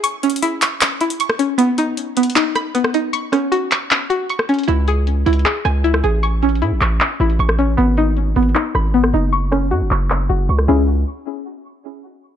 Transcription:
<<
  \new Staff \with { instrumentName = "Synth pluck" } { \time 4/4 \key cis \minor \tempo 4 = 155 cis'''8 cis'8 e'8 cis'''4 e'8 cis'''8 cis'8 | b8 dis'4 b8 dis'8 b''8 b8 dis'8 | cis'''8 cis'8 fis'8 cis'''4 fis'8 cis'''8 cis'8 | e'8 gis'4 e'8 gis'8 gis''8 e'8 gis'8 |
cis'''8 cis'8 e'8 cis'''4 e'8 cis'''8 cis'8 | b8 dis'4 b8 dis'8 b''8 b8 dis'8 | cis'''8 cis'8 fis'8 cis'''4 fis'8 cis'''8 <cis' e' gis'>8 | r1 | }
  \new Staff \with { instrumentName = "808-style bass" } { \clef bass \time 4/4 \key cis \minor r1 | r1 | r1 | cis,4. cis,8 r8 cis,4 a,,8~ |
a,,4 a,16 a,,16 a,,8 r8 a,,8 a,,4 | gis,,4. gis,,8 r8 gis,,4 fis,,8~ | fis,,4 fis,16 fis,,16 fis,,4 fis,,8 cis,8 cis,8~ | cis,8 r2. r8 | }
  \new DrumStaff \with { instrumentName = "Drums" } \drummode { \time 4/4 \tuplet 3/2 { hh16 r16 r16 hh16 hh16 hh16 } hh8 <hc hh>8 <hc hh>8 hh16 hh16 hh16 ss16 hh8 | hh8 hh8 \tuplet 3/2 { hh16 r16 r16 hh16 hh16 hh16 } <hc hh>8 <hh ss>8 hh16 ss16 hh8 | hh8 <hh ss>8 hh8 <hc hh>8 <hc hh>8 hh8 hh16 ss16 hh32 hh32 hh32 hh32 | hh8 hh8 \tuplet 3/2 { hh16 r16 r16 hh16 hh16 hh16 } <hc hh>8 <hh ss>8 hh16 ss16 hh8 |
\tuplet 3/2 { hh16 r16 r16 hh16 hh16 hh16 } hh8 <hc hh>8 <hc hh>8 hh16 hh16 hh16 ss16 hh8 | hh8 hh8 \tuplet 3/2 { hh16 r16 r16 hh16 hh16 hh16 } <hc hh>8 <hh ss>8 hh16 ss16 hh8 | hh8 <hh ss>8 hh8 <hc hh>8 <hc hh>8 hh8 hh16 ss16 cymc8 | r4 r4 r4 r4 | }
>>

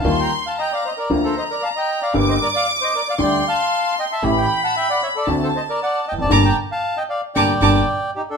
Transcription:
<<
  \new Staff \with { instrumentName = "Violin section" } { \time 4/4 \key g \minor \tempo 4 = 115 c'''4 bes''4 bes''2 | d'''2 c'''2 | b''2 a''2 | <a'' bes'' d'''>8 r4. <a'' bes'' d'''>8 <a'' bes'' d'''>8 r4 | }
  \new Staff \with { instrumentName = "Bandoneon" } { \time 4/4 \key g \minor <f'' a''>16 <g'' bes''>8 <f'' a''>16 <ees'' g''>16 <d'' f''>16 <c'' ees''>16 <bes' d''>8 <a' c''>16 <c'' ees''>16 <bes' d''>16 <f'' a''>16 <ees'' g''>8 <d'' f''>16~ | <d'' f''>16 <c'' ees''>16 <bes' d''>16 <d'' f''>8 <c'' ees''>16 <bes' d''>16 <d'' f''>16 <d'' g''>8 <f'' a''>4 <ees'' g''>16 <e'' a''>16~ | <e'' a''>16 <g'' b''>8 <fis'' a''>16 <e'' g''>16 <d'' fis''>16 <cis'' e''>16 <a' d''>8 <a' c''>16 <c'' ees''>16 <bes' d''>16 <d'' fis''>8 <ees'' g''>16 <d'' a''>16~ | <d'' a''>16 <g'' bes''>8 <f'' a''>8 <ees'' g''>16 <d'' f''>8 <d'' g''>4. <ees' g'>16 <d' a'>16 | }
  \new Staff \with { instrumentName = "Upright piano" } { \clef bass \time 4/4 \key g \minor <ees, ees g bes f'>8 r4. <d, d f bes f'>8 r4. | <g,, g, d g bes g'>8 r4. <d, d g a g'>8 r4. | <a,, a, e a cis' g'>8 r4. <d, d a c' fis'>8 r4 r32 e,32 f,32 fis,32 | <bes, d g>8 r4. <bes, d g>8 <bes, d g>8 r4 | }
  \new Staff \with { instrumentName = "Upright bass" } { \clef bass \time 4/4 \key g \minor ees,16. r4. r32 d,16. r4. r32 | g,,16. r4. r32 d,16. r4. r32 | a,,16. r4. r32 d,16. r4 r16 e,,32 f,,32 fis,,32 | g,,16. r4. r32 g,,16. r32 g,,16. r4 r32 | }
>>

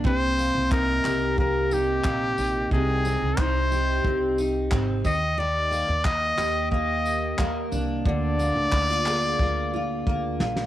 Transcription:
<<
  \new Staff \with { instrumentName = "Trumpet" } { \time 4/4 \key ees \major \tempo 4 = 90 c''4 bes'4 bes'8 g'4. | aes'4 c''4. r4 ees''8 | d''4 ees''4 ees''4. r8 | d''2.~ d''8 r8 | }
  \new Staff \with { instrumentName = "Steel-string acoustic guitar" } { \time 4/4 \key ees \major c8 bes8 ees'8 g'8 bes8 ees'8 bes8 ees'8 | c8 c'8 ees'8 g'8 c'8 ees'8 c'8 ees8 | ees8 bes4 g'8 bes4 bes8 d'8 | d8 bes8 ees'16 f'16 aes'8 bes8 f'8 bes8 f'8 | }
  \new Staff \with { instrumentName = "Upright bass" } { \clef bass \time 4/4 \key ees \major c,8. c,8. c,4. bes,,8 bes,,8 | c,8. c,16 c,4 c,4 aes,,8 ees,8~ | ees,8. ees,8. ees,4. ees,8 c,8 | d,8. d,16 d,4 d,4 d,8 bes,,8 | }
  \new DrumStaff \with { instrumentName = "Drums" } \drummode { \time 4/4 bd8 tamb8 <hc bd>8 <hc tamb>8 bd8 tamb8 <hc bd>8 tamb8 | bd8 tamb8 <hc bd>8 tamb8 bd8 tamb8 <hc bd>8 <bd tamb>8 | r8 tamb8 <hc bd>8 <hc tamb>8 bd8 tamb8 <hc bd>8 tamb8 | bd8 tamb8 <hc bd>8 <hc tamb>8 bd4 bd8 sn16 sn16 | }
>>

